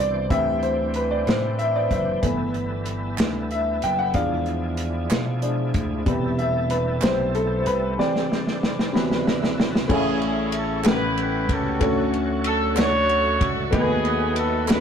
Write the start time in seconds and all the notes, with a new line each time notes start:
Already playing: B2 E3 D4 C5 D5
0.00 C2 D5
0.29 D2 E3 G3 C4 D4 G4 E5, kick, closed hi-hat
0.63 C5, closed hi-hat
0.94 B4, closed hi-hat
1.11 D5
1.26 A2 C5, snare, closed hi-hat
1.59 E5, closed hi-hat
1.76 D5
1.91 F#1 E5, kick, closed hi-hat
2.22 G1 E3 G3 A3 B3 E4 A4, kick, closed hi-hat
2.54 closed hi-hat
2.86 closed hi-hat
3.18 D2, snare, clap, closed hi-hat
3.51 E5, closed hi-hat
3.82 F#1 G5, closed hi-hat
3.99 F#5
4.13 E2 F3 G#3 D4 E4 G#4 F5, kick, closed hi-hat
4.46 closed hi-hat
4.77 closed hi-hat
5.10 B2, snare, clap, closed hi-hat
5.42 F3 G#3 D4, closed hi-hat
5.74 D2, kick, closed hi-hat
6.05 E1 C3 G3 A3 B3 E4 A4, kick, closed hi-hat
6.39 E5, closed hi-hat
6.70 B4, closed hi-hat
7.01 B1 G3 C4 B4 C5, snare, clap, closed hi-hat
7.35 A4, closed hi-hat
7.59 C5
7.66 C2 B4, closed hi-hat
7.98 E3 G3 C4 D4 A4 D5, snare
8.16 snare
8.32 snare
8.47 snare
8.63 snare
8.79 snare
8.93 D2 C3 E3 F#3 B3 E4 B4, snare
9.11 snare
9.27 E5, snare
9.44 snare
9.58 A5, snare
9.75 snare
9.88 A1 A2 A3 C#4 E4 G#4 C#5, kick, crash
9.93 G#4
10.22 G#4, ride bell
10.52 ride bell
10.57 A4
10.83 A1 A2 G3 A3 B3 C#4 G4 A4 A#4 F#5, snare, clap, ride bell
10.87 C4 E4 G4 B4
10.93 C#4 B4
11.17 B4, ride bell
11.49 C#2 C#4 F#4 A4, kick, ride bell
11.80 D2 D3 A3 C#4 F#4 C#5, kick, ride bell
11.84 F#3 A3 F#4 G#4 C#5
11.90 A4
12.14 ride bell
12.44 A4, ride bell
12.74 A3 D4 F#4 A4 C#5 F#5, clap, ride bell
12.79 F#4, snare
13.09 ride bell
13.41 C#2, kick, ride bell
13.71 D#2 D#3 F#3 A3 B3 D#4 F#4 G#4 A4 B4, kick, ride bell
13.75 D#4
13.80 B4
14.05 ride bell
14.36 A4, ride bell
14.67 A3 B3 C#4 F#4 A4 B4, snare, clap, ride bell
14.71 D#4 F#4